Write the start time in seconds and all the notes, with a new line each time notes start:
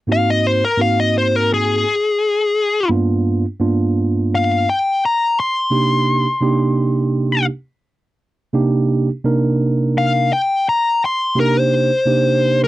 0.07 G#2 A#3 C4 D#4 F#4
0.12 F5
0.30 D#5
0.47 C5
0.65 A#4
0.78 G#2 A#3 C4 D#4 F#4 F5
1.00 D#5
1.18 C5
1.36 A#4
1.54 G#4
2.89 G2 A#3 B3 D4 F4
3.59 G2 A#3 B3 D4 F4
4.35 F5
4.70 G5
5.06 A#5
5.40 C6
5.70 C3 A#3 D4 D#4 G4
6.41 C3 A#3 D4 D#4 G4
8.53 C3 A#3 D4 D#4 G4
9.24 C3 A#3 D4 D#4 A#4
9.98 F5
10.33 G5
10.69 A#5
11.05 C6
11.35 C3 A#3 D4 D#4 G4
11.40 A#4
11.60 C5
12.05 C3 A#3 D4 D#4 G4
12.64 A#4